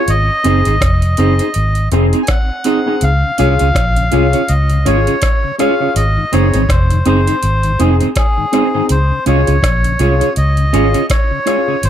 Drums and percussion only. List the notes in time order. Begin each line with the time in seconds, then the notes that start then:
0.08 closed hi-hat
0.44 closed hi-hat
0.65 closed hi-hat
0.81 kick, cross-stick, closed hi-hat
1.02 closed hi-hat
1.17 closed hi-hat
1.39 closed hi-hat
1.54 closed hi-hat
1.75 closed hi-hat
1.92 closed hi-hat
2.13 closed hi-hat
2.27 kick, cross-stick, closed hi-hat
2.64 closed hi-hat
3.01 closed hi-hat
3.38 closed hi-hat
3.59 closed hi-hat
3.75 kick, cross-stick, closed hi-hat
3.96 closed hi-hat
4.12 closed hi-hat
4.33 closed hi-hat
4.48 closed hi-hat
4.70 closed hi-hat
4.86 closed hi-hat
5.07 closed hi-hat
5.22 kick, cross-stick, closed hi-hat
5.59 cross-stick, closed hi-hat
5.96 closed hi-hat
6.33 closed hi-hat
6.54 closed hi-hat
6.69 kick, cross-stick, closed hi-hat
6.90 closed hi-hat
7.05 closed hi-hat
7.27 closed hi-hat
7.43 closed hi-hat
7.63 closed hi-hat
7.80 closed hi-hat
8.01 closed hi-hat
8.16 kick, cross-stick, closed hi-hat
8.53 cross-stick, closed hi-hat
8.89 closed hi-hat
9.26 closed hi-hat
9.47 closed hi-hat
9.63 kick, cross-stick, closed hi-hat
9.84 closed hi-hat
9.99 closed hi-hat
10.21 closed hi-hat
10.36 closed hi-hat
10.57 closed hi-hat
10.74 closed hi-hat
10.94 closed hi-hat
11.10 kick, cross-stick, closed hi-hat
11.47 cross-stick, closed hi-hat
11.83 closed hi-hat